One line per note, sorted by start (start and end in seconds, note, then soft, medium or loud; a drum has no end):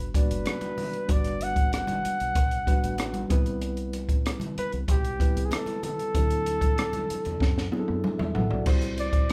0.00 0.11 G1 medium
0.00 0.14 G3 medium
0.00 0.21 B3 medium
0.00 0.15 D4 medium
0.00 0.16 F#4 medium
0.00 0.11 B4 medium
0.00 1.10 B4 medium
0.14 1.02 G3 medium
0.14 0.21 A#3 soft
0.14 1.02 D4 medium
0.14 1.02 F#4 medium
0.14 1.13 B4 medium
0.14 1.03 D5 medium
0.14 kick medium
0.14 closed hi-hat medium
0.14 muted conga soft
0.21 1.05 B3 medium
0.31 0.45 F#1 medium
0.31 closed hi-hat medium
0.46 cross-stick medium
0.46 closed hi-hat medium
0.46 muted conga soft
0.46 high conga medium
0.61 closed hi-hat soft
0.61 high conga medium
0.78 open hi-hat soft
0.78 muted conga soft
0.78 low conga medium
0.93 closed hi-hat soft
1.08 2.00 G1 medium
1.08 2.25 G3 medium
1.08 2.25 B3 medium
1.08 2.25 D4 medium
1.08 2.26 F#4 medium
1.08 2.26 B4 medium
1.08 1.44 D5 medium
1.08 kick medium
1.08 closed hi-hat medium
1.24 cross-stick soft
1.24 closed hi-hat soft
1.41 1.74 F#5 medium
1.41 closed hi-hat medium
1.41 muted conga soft
1.56 kick medium
1.56 closed hi-hat soft
1.56 high conga soft
1.72 3.27 F#5 medium
1.72 cross-stick medium
1.72 closed hi-hat medium
1.72 muted conga soft
1.87 closed hi-hat soft
1.87 high conga medium
1.87 low conga medium
2.05 muted fingered electric bass stroke soft
2.05 closed hi-hat medium
2.20 2.35 B1 medium
2.20 closed hi-hat soft
2.35 2.64 B1 medium
2.35 kick medium
2.35 closed hi-hat medium
2.35 muted conga soft
2.51 closed hi-hat soft
2.66 3.28 G3 medium
2.66 3.29 B3 medium
2.66 3.31 D4 medium
2.66 3.31 F#4 medium
2.66 3.31 B4 medium
2.66 kick medium
2.66 closed hi-hat medium
2.66 muted conga soft
2.84 3.25 A1 medium
2.84 closed hi-hat medium
2.98 cross-stick loud
2.98 closed hi-hat medium
2.98 high conga medium
3.14 closed hi-hat soft
3.14 high conga medium
3.29 4.42 C2 medium
3.29 4.46 G3 medium
3.29 4.46 B3 medium
3.29 4.47 C4 medium
3.29 4.47 E4 medium
3.29 4.47 B4 loud
3.29 kick medium
3.29 closed hi-hat medium
3.29 low conga medium
3.46 closed hi-hat soft
3.62 closed hi-hat medium
3.77 closed hi-hat soft
3.93 closed hi-hat medium
3.93 muted conga soft
4.09 kick medium
4.09 closed hi-hat soft
4.09 high conga soft
4.26 cross-stick medium
4.26 closed hi-hat medium
4.40 closed hi-hat soft
4.40 high conga medium
4.40 low conga medium
4.58 4.72 B4 medium
4.58 muted fingered electric bass stroke soft
4.58 closed hi-hat medium
4.72 4.87 C2 medium
4.72 closed hi-hat soft
4.88 5.16 B1 medium
4.88 5.47 G4 medium
4.88 kick medium
4.88 closed hi-hat medium
4.88 muted conga soft
5.05 closed hi-hat soft
5.19 6.06 G3 medium
5.19 6.07 B3 medium
5.19 6.07 C4 medium
5.19 6.07 E4 medium
5.19 6.08 B4 medium
5.19 kick medium
5.19 closed hi-hat medium
5.36 5.50 C2 medium
5.36 closed hi-hat medium
5.45 5.55 G#4 medium
5.51 5.84 A4 medium
5.51 cross-stick loud
5.51 closed hi-hat medium
5.51 muted conga soft
5.51 high conga medium
5.66 closed hi-hat soft
5.66 high conga medium
5.83 7.69 A4 medium
5.83 closed hi-hat medium
5.83 muted conga soft
5.83 low conga medium
5.99 closed hi-hat soft
6.14 7.05 D2 medium
6.14 7.30 F#3 medium
6.14 7.30 C4 medium
6.14 7.31 D4 medium
6.14 7.31 E4 medium
6.14 6.22 G4 medium
6.14 kick medium
6.14 closed hi-hat medium
6.14 muted conga soft
6.23 7.35 A4 medium
6.30 closed hi-hat soft
6.46 closed hi-hat medium
6.46 muted conga soft
6.61 kick medium
6.61 closed hi-hat soft
6.61 high conga soft
6.78 cross-stick medium
6.78 closed hi-hat medium
6.78 muted conga soft
6.93 closed hi-hat soft
6.93 high conga medium
6.93 low conga medium
7.10 muted fingered electric bass stroke soft
7.10 closed hi-hat medium
7.10 muted conga soft
7.25 7.39 E2 medium
7.25 closed hi-hat soft
7.25 low conga medium
7.40 7.69 F#2 medium
7.40 kick medium
7.40 snare medium
7.58 snare soft
7.71 8.58 F#3 medium
7.71 8.59 C4 medium
7.71 8.59 D4 medium
7.71 8.59 E4 medium
7.71 7.79 G#4 medium
7.71 high tom medium
7.71 muted conga soft
7.79 8.07 A4 medium
7.88 8.03 F#2 medium
7.88 high tom medium
8.04 mid tom medium
8.04 muted conga soft
8.04 high conga medium
8.18 8.34 E2 medium
8.18 8.34 E5 medium
8.18 mid tom medium
8.18 high conga medium
8.35 8.50 A#1 medium
8.35 8.50 A4 medium
8.35 8.50 F#5 medium
8.35 floor tom medium
8.35 low conga medium
8.50 8.65 B1 medium
8.50 8.80 F#4 soft
8.50 8.80 D5 medium
8.50 floor tom medium
8.65 9.08 C2 medium
8.65 9.33 G3 medium
8.65 9.33 C4 medium
8.65 9.33 E4 medium
8.65 9.33 C5 medium
8.65 kick medium
8.65 crash medium
8.65 muted conga soft
8.81 cross-stick soft
8.81 closed hi-hat soft
8.98 9.28 D5 medium
8.98 closed hi-hat medium
8.98 muted conga soft
9.13 kick medium
9.13 closed hi-hat soft
9.13 high conga soft
9.30 closed hi-hat medium